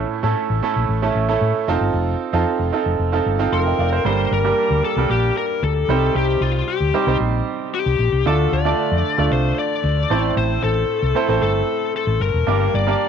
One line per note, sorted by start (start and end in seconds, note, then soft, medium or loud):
0.00 0.59 A2 medium
0.00 0.23 A3 medium
0.00 0.23 C#4 medium
0.00 0.23 E4 medium
0.00 0.24 A4 medium
0.23 0.33 A2 medium
0.23 0.48 A3 medium
0.23 0.49 C#4 medium
0.23 0.49 E4 medium
0.23 0.49 A4 loud
0.50 0.60 A1 medium
0.63 0.88 A3 medium
0.63 0.88 C#4 medium
0.63 0.88 E4 medium
0.63 0.89 A4 loud
0.76 0.86 A#1 medium
0.89 1.09 A1 medium
1.02 1.19 A3 medium
1.02 1.19 C#4 medium
1.02 1.19 E4 medium
1.02 1.20 A4 loud
1.15 1.35 A1 medium
1.28 1.54 A3 medium
1.28 1.54 C#4 medium
1.28 1.54 E4 medium
1.28 1.54 A4 loud
1.41 1.51 A2 loud
1.68 1.78 F1 medium
1.68 2.21 C4 medium
1.68 2.21 D#4 medium
1.68 2.21 F4 medium
1.68 2.21 A4 loud
1.81 1.91 G1 medium
1.94 2.14 F1 loud
2.33 2.43 F2 medium
2.33 2.59 C4 medium
2.33 2.59 D#4 medium
2.33 2.59 F4 medium
2.33 2.59 A4 loud
2.59 2.69 F1 medium
2.72 2.98 C4 medium
2.72 2.99 D#4 medium
2.72 2.99 F4 medium
2.72 2.99 A4 medium
2.86 2.96 F1 medium
2.99 3.19 F1 medium
3.12 3.29 C4 medium
3.12 3.30 D#4 medium
3.12 3.30 F4 medium
3.12 3.30 A4 loud
3.26 3.46 G1 loud
3.39 3.64 C4 medium
3.39 3.65 D#4 medium
3.39 3.65 F4 medium
3.39 3.53 A4 loud
3.52 3.72 F1 loud
3.52 4.07 A#4 medium
3.52 3.77 C6 medium
3.66 3.79 D#5 medium
3.66 3.78 G5 medium
3.78 3.98 F1 medium
3.78 3.92 D5 medium
3.78 3.92 F5 medium
3.92 4.17 A4 medium
3.92 4.17 C5 medium
4.05 4.25 G1 loud
4.05 4.80 G2 medium
4.05 4.30 G3 medium
4.05 4.30 A#3 medium
4.05 4.31 D4 medium
4.05 4.31 G4 medium
4.05 4.31 A#4 medium
4.05 4.33 C5 loud
4.31 4.51 G1 loud
4.31 4.84 A#4 loud
4.44 4.78 G3 medium
4.44 4.78 A#3 medium
4.44 4.78 D4 medium
4.44 4.79 G4 medium
4.44 4.79 A#4 medium
4.70 4.80 D2 medium
4.85 5.10 A4 medium
4.96 5.07 C2 medium
4.96 5.65 G3 medium
4.96 5.65 A#3 medium
4.96 5.65 D4 medium
4.96 5.65 G4 medium
4.96 5.65 A#4 medium
5.09 5.30 A#1 medium
5.09 5.37 G4 medium
5.37 5.63 A#4 medium
5.62 5.82 D2 medium
5.62 6.16 A4 loud
5.88 6.08 C2 medium
5.88 6.64 C3 medium
5.88 6.73 G3 medium
5.88 6.73 C4 medium
5.88 6.73 D#4 medium
5.88 6.74 G4 medium
5.88 6.74 C5 medium
6.15 6.35 C2 loud
6.15 6.40 G4 medium
6.41 6.61 C2 loud
6.41 6.69 F4 medium
6.68 7.17 G4 medium
6.81 6.91 D2 medium
6.94 7.03 G3 medium
6.94 7.03 C4 medium
6.94 7.03 D#4 medium
6.94 7.03 G4 medium
6.94 7.03 C5 medium
7.07 7.17 C2 medium
7.07 7.75 G3 medium
7.07 7.75 C4 medium
7.07 7.75 D#4 medium
7.07 7.75 G4 medium
7.07 7.76 C5 medium
7.20 7.40 A#1 loud
7.74 8.27 G4 medium
7.86 7.96 C2 medium
7.99 8.09 A#1 medium
8.12 8.22 C2 loud
8.26 8.46 D2 loud
8.26 9.01 D3 medium
8.26 8.51 A3 medium
8.26 8.51 D4 medium
8.26 8.51 F4 medium
8.26 8.52 A4 medium
8.26 8.51 A4 medium
8.26 8.52 D5 medium
8.52 8.72 D2 loud
8.52 9.32 D5 loud
8.65 8.99 A3 medium
8.65 8.99 D4 medium
8.65 8.99 F4 medium
8.65 8.99 A4 medium
8.65 9.00 D5 medium
8.91 9.01 F2 medium
9.18 9.28 D2 medium
9.18 9.85 A3 medium
9.18 9.86 D4 medium
9.18 9.86 F4 medium
9.18 9.86 A4 medium
9.18 9.86 D5 medium
9.31 9.51 C2 loud
9.31 9.59 C5 loud
9.59 10.33 D5 loud
9.84 10.03 D2 loud
10.10 10.30 A1 medium
10.10 10.85 A2 medium
10.10 10.94 A3 medium
10.10 10.94 C4 medium
10.10 10.95 E4 medium
10.10 10.95 A4 medium
10.10 10.95 C5 medium
10.36 10.56 A1 loud
10.36 10.63 C5 loud
10.63 10.83 A1 loud
10.63 11.42 A4 medium
11.02 11.12 C2 medium
11.15 11.24 A3 medium
11.15 11.24 C4 medium
11.15 11.24 E4 medium
11.15 11.24 A4 medium
11.15 11.24 C5 medium
11.28 11.38 A1 loud
11.28 11.96 A3 medium
11.28 11.96 C4 medium
11.28 11.96 E4 medium
11.28 11.96 A4 medium
11.28 11.96 C5 medium
11.41 11.61 G1 medium
11.41 11.91 A4 medium
11.96 12.21 A4 medium
12.07 12.17 A1 medium
12.20 12.30 G1 loud
12.20 12.75 A#4 loud
12.34 12.44 E1 medium
12.46 12.67 G1 loud
12.46 13.09 G2 medium
12.46 12.72 A#3 medium
12.46 12.72 D4 medium
12.46 12.72 G4 medium
12.46 12.73 A#4 medium
12.46 12.73 D5 medium
12.74 12.93 G1 loud
12.74 13.09 D5 loud
12.87 13.09 A#3 medium
12.87 13.09 D4 medium
12.87 13.09 G4 medium
12.87 13.09 A#4 medium
12.87 13.09 D5 medium